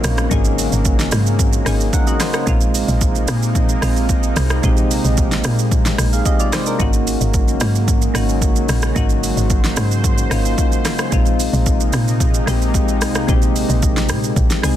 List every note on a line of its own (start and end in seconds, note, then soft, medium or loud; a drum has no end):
0.00 2.43 C#3 medium
0.00 2.43 F#3 medium
0.00 11.08 G#3 medium
0.00 0.30 A#3 medium
0.00 2.43 A#3 medium
0.00 2.47 C4 medium
0.00 0.31 C#4 medium
0.00 0.32 D#4 medium
0.00 0.16 F4 medium
0.00 2.08 F#4 loud
0.00 open hi-hat medium
0.00 shaker medium
0.04 0.28 A#1 loud
0.04 cross-stick loud
0.18 cross-stick loud
0.18 shaker medium
0.30 0.67 G#1 loud
0.30 1.17 A#3 medium
0.30 1.18 C#4 medium
0.30 1.18 D#4 medium
0.30 1.19 G#4 loud
0.30 kick loud
0.30 shaker medium
0.45 shaker medium
0.59 open hi-hat medium
0.59 shaker loud
0.72 1.07 G#1 medium
0.72 shaker medium
0.85 kick loud
0.85 shaker medium
0.99 snare medium
0.99 shaker medium
1.12 1.60 G#2 loud
1.12 cross-stick loud
1.12 open hi-hat medium
1.12 shaker medium
1.27 shaker medium
1.39 kick loud
1.39 shaker medium
1.53 shaker medium
1.65 1.90 G#1 medium
1.65 2.31 A#3 medium
1.65 1.93 C#4 medium
1.65 1.94 D#4 medium
1.65 1.94 G#4 medium
1.65 cross-stick loud
1.65 open hi-hat medium
1.65 shaker loud
1.81 shaker medium
1.93 2.07 A#4 medium
1.93 2.07 F#5 medium
1.93 kick medium
1.93 shaker medium
2.07 2.20 F#4 medium
2.07 2.20 D#5 medium
2.07 shaker medium
2.20 2.34 D#4 medium
2.20 2.34 C5 medium
2.20 cross-stick medium
2.20 snare medium
2.20 open hi-hat medium
2.20 shaker medium
2.33 2.60 C#4 medium
2.33 2.60 A#4 medium
2.33 cross-stick loud
2.33 shaker medium
2.46 2.84 A#1 loud
2.46 6.76 C3 medium
2.46 3.33 G#3 medium
2.46 6.76 A#3 medium
2.46 3.34 C4 medium
2.46 6.76 D#4 medium
2.46 3.34 D#4 medium
2.46 3.35 F4 loud
2.46 kick loud
2.46 shaker medium
2.61 shaker medium
2.75 open hi-hat medium
2.75 shaker loud
2.88 3.24 A#1 loud
2.88 shaker medium
3.01 kick loud
3.01 shaker medium
3.15 shaker medium
3.28 3.76 A#2 loud
3.28 cross-stick medium
3.28 open hi-hat medium
3.28 shaker medium
3.43 shaker medium
3.55 kick loud
3.55 shaker medium
3.69 shaker medium
3.81 4.30 A#1 medium
3.81 4.47 G#3 medium
3.81 4.48 C4 medium
3.81 4.48 D#4 medium
3.81 4.48 F4 medium
3.81 cross-stick loud
3.81 open hi-hat medium
3.81 shaker loud
3.97 shaker medium
4.09 kick medium
4.09 shaker medium
4.23 shaker medium
4.36 4.60 C2 loud
4.36 cross-stick loud
4.36 open hi-hat medium
4.36 shaker medium
4.50 cross-stick loud
4.50 shaker medium
4.62 5.00 A#1 loud
4.62 5.50 G#3 medium
4.62 5.50 C4 medium
4.62 5.51 D#4 medium
4.62 5.51 G4 loud
4.62 kick loud
4.62 shaker medium
4.77 shaker medium
4.91 open hi-hat medium
4.91 shaker medium
5.05 5.40 A#1 medium
5.05 shaker medium
5.17 kick loud
5.17 shaker medium
5.32 snare medium
5.32 shaker soft
5.44 5.92 A#2 loud
5.44 cross-stick loud
5.44 open hi-hat medium
5.44 shaker medium
5.59 shaker medium
5.72 kick loud
5.72 shaker medium
5.85 snare medium
5.85 shaker medium
5.98 6.22 A#1 medium
5.98 cross-stick loud
5.98 open hi-hat medium
5.98 shaker loud
6.13 6.25 G#4 medium
6.13 6.25 F5 medium
6.13 shaker medium
6.26 6.39 G4 medium
6.26 6.39 D#5 medium
6.26 kick medium
6.26 shaker medium
6.40 6.53 F4 medium
6.40 6.52 D5 medium
6.40 shaker medium
6.53 6.67 D#4 medium
6.53 6.66 C5 medium
6.53 cross-stick loud
6.53 snare medium
6.53 open hi-hat medium
6.53 shaker medium
6.66 6.93 D4 medium
6.66 6.93 A#4 medium
6.66 shaker medium
6.79 7.16 G#1 loud
6.79 11.08 C#3 medium
6.79 11.08 F#3 medium
6.79 7.66 A#3 medium
6.79 8.94 A#3 medium
6.79 7.66 C#4 medium
6.79 7.67 D#4 medium
6.79 7.67 F#4 loud
6.79 kick loud
6.79 shaker medium
6.93 shaker medium
7.07 open hi-hat medium
7.07 shaker loud
7.21 7.56 G#1 medium
7.21 shaker medium
7.34 kick loud
7.34 shaker medium
7.48 shaker medium
7.60 8.09 G#2 loud
7.60 cross-stick medium
7.60 open hi-hat medium
7.60 shaker medium
7.75 shaker medium
7.88 kick loud
7.88 shaker medium
8.02 shaker medium
8.14 8.63 G#1 medium
8.14 8.80 A#3 medium
8.14 8.80 C#4 medium
8.14 8.81 D#4 medium
8.14 8.81 F#4 loud
8.14 cross-stick loud
8.14 open hi-hat medium
8.14 shaker loud
8.29 shaker medium
8.42 kick medium
8.42 shaker medium
8.56 shaker medium
8.69 8.93 A#1 medium
8.69 cross-stick loud
8.69 open hi-hat medium
8.69 shaker medium
8.82 cross-stick loud
8.82 shaker medium
8.95 9.32 G#1 loud
8.95 9.82 A#3 medium
8.95 9.83 C#4 medium
8.95 9.83 D#4 medium
8.95 9.83 F#4 loud
8.95 11.10 C5 medium
8.95 kick loud
8.95 shaker medium
9.09 shaker medium
9.23 open hi-hat medium
9.23 shaker loud
9.37 9.72 G#1 medium
9.37 shaker medium
9.50 kick loud
9.50 shaker medium
9.64 snare medium
9.64 shaker soft
9.76 10.25 G#2 loud
9.76 cross-stick loud
9.76 open hi-hat medium
9.76 shaker medium
9.91 shaker medium
10.04 kick loud
10.04 shaker medium
10.18 shaker medium
10.30 10.55 G#1 medium
10.30 10.96 A#3 medium
10.30 10.96 C#4 medium
10.30 10.97 D#4 medium
10.30 10.97 F4 loud
10.30 cross-stick loud
10.30 open hi-hat medium
10.30 shaker loud
10.45 shaker medium
10.58 kick medium
10.58 shaker medium
10.72 shaker medium
10.85 cross-stick loud
10.85 snare medium
10.85 open hi-hat medium
10.85 shaker medium
10.99 cross-stick loud
10.99 shaker medium
11.11 11.48 A#1 loud
11.11 14.76 C3 medium
11.11 11.98 G#3 medium
11.11 14.76 G#3 medium
11.11 14.76 A#3 medium
11.11 11.99 C4 medium
11.11 14.76 D#4 medium
11.11 11.99 D#4 medium
11.11 12.00 F4 loud
11.11 kick loud
11.11 shaker medium
11.26 shaker medium
11.40 open hi-hat medium
11.40 shaker loud
11.53 11.89 A#1 loud
11.53 shaker medium
11.66 kick loud
11.66 shaker medium
11.80 shaker medium
11.93 12.41 A#2 loud
11.93 cross-stick loud
11.93 open hi-hat medium
11.93 shaker medium
12.08 shaker medium
12.20 kick loud
12.20 shaker medium
12.34 shaker medium
12.46 13.03 A#1 loud
12.46 13.12 G#3 medium
12.46 13.12 C4 medium
12.46 13.13 D#4 medium
12.46 13.13 G4 medium
12.46 cross-stick loud
12.46 open hi-hat medium
12.46 shaker loud
12.62 shaker medium
12.74 kick medium
12.74 shaker medium
12.88 shaker medium
13.01 13.25 C2 medium
13.01 cross-stick loud
13.01 open hi-hat medium
13.01 shaker medium
13.15 cross-stick loud
13.15 shaker medium
13.27 13.65 A#1 loud
13.27 14.14 G#3 medium
13.27 14.15 C4 medium
13.27 14.15 D#4 medium
13.27 14.16 G4 loud
13.27 kick loud
13.27 shaker medium
13.42 shaker medium
13.56 open hi-hat medium
13.56 shaker loud
13.70 14.11 A#1 medium
13.70 shaker medium
13.82 kick loud
13.82 shaker medium
13.97 snare medium
13.97 shaker soft
14.09 14.33 A#2 loud
14.09 cross-stick loud
14.09 open hi-hat medium
14.09 shaker medium
14.24 shaker medium
14.36 14.49 A#1 medium
14.36 kick loud
14.36 shaker medium
14.50 snare medium
14.50 shaker medium
14.62 14.76 C2 medium
14.62 14.76 G#3 medium
14.62 14.76 C4 medium
14.62 14.76 D#4 medium
14.62 14.76 G#4 medium
14.62 cross-stick loud
14.62 open hi-hat medium
14.62 shaker loud